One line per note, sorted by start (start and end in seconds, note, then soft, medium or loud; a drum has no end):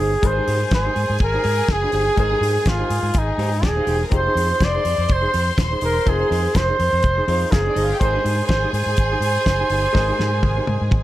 0.00 0.15 G1 medium
0.00 0.18 F3 medium
0.00 0.18 C4 medium
0.00 0.12 D#4 medium
0.00 0.19 D#4 medium
0.00 0.19 F4 medium
0.00 0.27 G#4 loud
0.00 0.12 G#4 medium
0.00 0.12 C5 medium
0.21 0.39 G#1 medium
0.21 2.13 G#3 medium
0.21 2.13 D#4 medium
0.21 3.54 G#4 loud
0.21 2.14 G#4 medium
0.21 2.14 A#4 medium
0.21 3.55 G#5 loud
0.21 muted clean electric guitar stroke soft
0.21 kick loud
0.21 closed hi-hat medium
0.25 0.30 B4 medium
0.25 0.73 C5 loud
0.31 2.18 C5 medium
0.37 0.46 D#4 medium
0.37 0.47 G4 medium
0.37 0.47 C5 medium
0.47 0.63 G#2 loud
0.47 0.60 D#4 medium
0.47 0.60 G4 medium
0.47 0.60 C5 medium
0.47 open hi-hat medium
0.61 muted clean electric guitar stroke soft
0.71 0.87 G#1 medium
0.71 1.18 C5 medium
0.71 muted clean electric guitar stroke soft
0.71 kick loud
0.71 snare loud
0.71 closed hi-hat medium
0.85 0.95 D#4 medium
0.85 0.95 G4 medium
0.85 0.95 C5 medium
0.96 1.05 G#2 medium
0.96 muted clean electric guitar stroke medium
0.96 open hi-hat medium
1.10 1.16 G#2 medium
1.10 muted clean electric guitar stroke soft
1.19 1.36 G#1 medium
1.19 muted clean electric guitar stroke soft
1.19 kick loud
1.19 closed hi-hat medium
1.23 1.73 A#4 medium
1.34 1.44 D#4 medium
1.34 1.45 G4 medium
1.34 1.45 C5 medium
1.44 1.60 G#2 loud
1.44 muted clean electric guitar stroke soft
1.44 open hi-hat medium
1.59 muted clean electric guitar stroke soft
1.68 1.84 F#1 medium
1.68 2.19 G#4 loud
1.68 muted clean electric guitar stroke medium
1.68 kick loud
1.68 snare loud
1.68 closed hi-hat medium
1.82 1.92 D#4 medium
1.82 1.93 G4 medium
1.82 1.93 C5 medium
1.92 2.08 G1 medium
1.92 2.06 D#4 medium
1.92 2.06 G4 medium
1.92 2.05 C5 medium
1.92 open hi-hat medium
2.06 muted clean electric guitar stroke soft
2.16 2.33 G#1 medium
2.16 4.07 G#3 medium
2.16 4.08 D#4 medium
2.16 4.09 G#4 medium
2.16 2.70 G#4 loud
2.16 4.09 A#4 soft
2.16 4.09 C5 medium
2.16 muted clean electric guitar stroke soft
2.16 kick medium
2.16 closed hi-hat medium
2.31 2.40 D#4 medium
2.31 2.41 G4 medium
2.31 2.42 C5 medium
2.41 2.57 G#2 loud
2.41 2.54 D#4 medium
2.41 2.54 G4 medium
2.41 2.54 C5 medium
2.41 open hi-hat medium
2.56 muted clean electric guitar stroke medium
2.66 2.81 G#1 medium
2.66 3.20 F4 medium
2.66 muted clean electric guitar stroke soft
2.66 kick medium
2.66 snare loud
2.66 closed hi-hat medium
2.79 2.89 D#4 medium
2.79 2.90 G4 medium
2.79 2.90 C5 medium
2.90 2.99 G#2 medium
2.90 muted clean electric guitar stroke soft
2.90 open hi-hat medium
3.03 3.10 G#2 medium
3.03 muted clean electric guitar stroke medium
3.14 3.30 G#1 medium
3.14 kick loud
3.14 closed hi-hat medium
3.18 3.68 D#4 medium
3.28 muted clean electric guitar stroke soft
3.38 3.64 G#2 loud
3.38 3.54 D#4 medium
3.38 3.52 G4 medium
3.38 3.51 C5 medium
3.38 open hi-hat medium
3.52 muted clean electric guitar stroke soft
3.62 3.79 D#1 medium
3.62 3.71 D4 medium
3.62 3.71 D5 medium
3.62 muted clean electric guitar stroke soft
3.62 kick loud
3.62 snare loud
3.62 closed hi-hat medium
3.66 3.79 D#4 medium
3.66 4.02 G#4 loud
3.71 3.79 D#5 medium
3.76 3.87 D#4 medium
3.76 3.88 F4 medium
3.76 3.87 G4 medium
3.76 3.88 C5 medium
3.76 3.88 F5 medium
3.86 4.03 E1 medium
3.86 4.00 D#4 medium
3.86 3.95 G4 medium
3.86 4.01 G4 medium
3.86 4.00 C5 medium
3.86 3.95 G5 medium
3.86 open hi-hat medium
3.95 4.03 G#4 medium
3.95 4.04 G#5 medium
4.02 4.12 A#4 medium
4.02 4.13 A#5 medium
4.02 muted clean electric guitar stroke soft
4.10 4.28 F1 loud
4.10 6.02 F3 medium
4.10 6.02 C4 medium
4.10 6.02 D#4 medium
4.10 6.03 G4 medium
4.10 6.03 G#4 medium
4.10 7.44 C5 medium
4.10 7.44 C6 medium
4.10 muted clean electric guitar stroke soft
4.10 kick loud
4.10 closed hi-hat medium
4.16 4.66 C5 loud
4.27 4.35 D#4 medium
4.27 4.36 G#4 medium
4.27 4.37 C5 medium
4.35 4.51 F2 loud
4.35 4.49 D#4 medium
4.35 4.49 G#4 medium
4.35 4.50 C5 medium
4.35 open hi-hat medium
4.51 muted clean electric guitar stroke soft
4.60 4.76 F1 medium
4.60 5.14 D5 loud
4.60 kick medium
4.60 snare loud
4.60 closed hi-hat medium
4.75 4.84 D#4 medium
4.75 4.85 G#4 medium
4.75 4.85 C5 medium
4.85 4.94 F2 medium
4.85 muted clean electric guitar stroke soft
4.85 open hi-hat medium
4.98 5.05 F2 medium
4.98 muted clean electric guitar stroke soft
5.09 5.25 F1 loud
5.09 5.57 C5 medium
5.09 muted clean electric guitar stroke soft
5.09 kick loud
5.09 closed hi-hat medium
5.22 5.32 D#4 medium
5.22 5.32 G#4 medium
5.22 5.33 C5 medium
5.33 5.49 F2 loud
5.33 muted clean electric guitar stroke soft
5.33 open hi-hat medium
5.47 muted clean electric guitar stroke soft
5.58 5.73 D#1 loud
5.58 muted clean electric guitar stroke soft
5.58 kick loud
5.58 snare loud
5.58 closed hi-hat medium
5.71 5.81 D#4 medium
5.71 5.81 G#4 medium
5.71 5.82 C5 medium
5.81 5.97 E1 medium
5.81 5.95 D#4 medium
5.81 5.95 G#4 medium
5.81 6.10 A#4 medium
5.81 5.95 C5 medium
5.81 open hi-hat medium
5.96 muted clean electric guitar stroke soft
6.06 6.22 F1 medium
6.06 7.25 F3 medium
6.06 7.25 C4 medium
6.06 7.26 D#4 medium
6.06 7.26 G#4 medium
6.06 6.58 G#4 medium
6.06 7.27 A#4 medium
6.06 muted clean electric guitar stroke soft
6.06 kick loud
6.06 closed hi-hat medium
6.20 6.30 D#4 medium
6.20 6.31 G#4 medium
6.20 6.31 C5 medium
6.31 6.46 F2 loud
6.31 6.44 D#4 medium
6.31 6.44 G#4 medium
6.31 6.44 C5 medium
6.31 open hi-hat medium
6.45 muted clean electric guitar stroke medium
6.55 6.70 F1 medium
6.55 7.53 C5 loud
6.55 muted clean electric guitar stroke soft
6.55 kick loud
6.55 snare loud
6.55 closed hi-hat medium
6.68 6.77 D#4 medium
6.68 6.78 G#4 medium
6.68 6.78 C5 medium
6.79 6.88 F2 medium
6.79 muted clean electric guitar stroke medium
6.79 open hi-hat medium
6.92 7.00 F2 medium
6.92 muted clean electric guitar stroke soft
7.03 7.20 F1 loud
7.03 muted clean electric guitar stroke soft
7.03 kick loud
7.03 closed hi-hat medium
7.17 7.26 D#4 medium
7.17 7.27 G#4 medium
7.17 7.27 C5 medium
7.27 7.43 F2 loud
7.27 8.00 F3 medium
7.27 8.01 C4 medium
7.27 8.00 D#4 medium
7.27 8.01 F4 soft
7.27 8.00 G#4 medium
7.27 muted clean electric guitar stroke soft
7.27 open hi-hat medium
7.41 muted clean electric guitar stroke soft
7.51 7.68 F#1 medium
7.51 7.61 A#3 medium
7.51 7.99 G#4 loud
7.51 7.61 A#4 medium
7.51 muted clean electric guitar stroke medium
7.51 kick loud
7.51 snare loud
7.51 closed hi-hat medium
7.61 7.69 C4 medium
7.61 7.69 C5 medium
7.65 7.77 D4 medium
7.65 7.74 D#4 medium
7.65 7.75 G#4 medium
7.65 7.75 C5 medium
7.65 7.76 D5 medium
7.75 7.92 G1 medium
7.75 7.88 D#4 medium
7.75 7.85 D#4 medium
7.75 7.89 G#4 medium
7.75 7.88 C5 medium
7.75 7.84 D#5 medium
7.75 open hi-hat medium
7.85 7.93 F4 medium
7.85 7.93 F5 medium
7.89 8.01 G4 medium
7.89 8.01 G5 medium
7.89 muted clean electric guitar stroke soft
8.00 8.16 G#1 loud
8.00 9.91 G#3 medium
8.00 9.91 D#4 medium
8.00 11.03 G#4 medium
8.00 9.92 G#4 medium
8.00 9.92 A#4 medium
8.00 8.45 C5 loud
8.00 9.92 C5 medium
8.00 11.03 G#5 loud
8.00 muted clean electric guitar stroke soft
8.00 kick loud
8.00 closed hi-hat medium
8.13 8.23 D#4 medium
8.13 8.24 G4 medium
8.13 8.24 C5 medium
8.24 8.40 G#2 medium
8.24 8.37 D#4 medium
8.24 8.37 G4 medium
8.24 8.38 C5 medium
8.24 open hi-hat medium
8.39 muted clean electric guitar stroke soft
8.47 8.65 G#1 medium
8.47 8.71 C5 loud
8.47 muted clean electric guitar stroke soft
8.47 kick loud
8.47 snare loud
8.47 closed hi-hat medium
8.63 8.73 D#4 medium
8.63 8.73 G4 medium
8.63 8.73 C5 medium
8.73 8.82 G#2 medium
8.73 11.03 C5 loud
8.73 open hi-hat medium
8.86 8.93 G#2 medium
8.86 muted clean electric guitar stroke soft
8.97 9.13 G#1 medium
8.97 muted clean electric guitar stroke soft
8.97 kick loud
8.97 closed hi-hat medium
9.12 9.21 D#4 medium
9.12 9.21 G4 medium
9.12 9.22 C5 medium
9.20 9.37 G#2 medium
9.20 muted clean electric guitar stroke soft
9.20 open hi-hat medium
9.36 muted clean electric guitar stroke soft
9.46 9.62 F#1 medium
9.46 muted clean electric guitar stroke soft
9.46 kick loud
9.46 snare loud
9.46 closed hi-hat medium
9.60 9.70 D#4 medium
9.60 9.70 G4 medium
9.60 9.71 C5 medium
9.70 9.86 G1 medium
9.70 9.83 D#4 medium
9.70 9.84 G4 medium
9.70 9.83 C5 medium
9.70 open hi-hat medium
9.84 muted clean electric guitar stroke soft
9.93 10.11 G#1 medium
9.93 11.03 G#3 medium
9.93 11.03 D#4 medium
9.93 11.03 G#4 medium
9.93 11.03 A#4 medium
9.93 11.03 C5 medium
9.93 muted clean electric guitar stroke soft
9.93 kick loud
9.93 snare medium
10.08 10.18 D#4 medium
10.08 10.18 G4 medium
10.08 10.19 C5 medium
10.19 10.44 G#2 medium
10.19 10.32 D#4 medium
10.19 10.32 G4 medium
10.19 10.31 C5 medium
10.19 snare medium
10.32 muted clean electric guitar stroke soft
10.43 10.58 G#1 loud
10.43 muted clean electric guitar stroke soft
10.43 kick loud
10.43 high tom medium
10.57 10.67 D#4 medium
10.57 10.67 G4 medium
10.57 10.67 C5 medium
10.67 10.77 G#2 medium
10.67 muted clean electric guitar stroke soft
10.67 high tom medium
10.81 10.88 G#2 medium
10.81 muted clean electric guitar stroke soft
10.91 11.03 G#1 medium
10.91 muted clean electric guitar stroke soft
10.91 kick loud
10.91 mid tom medium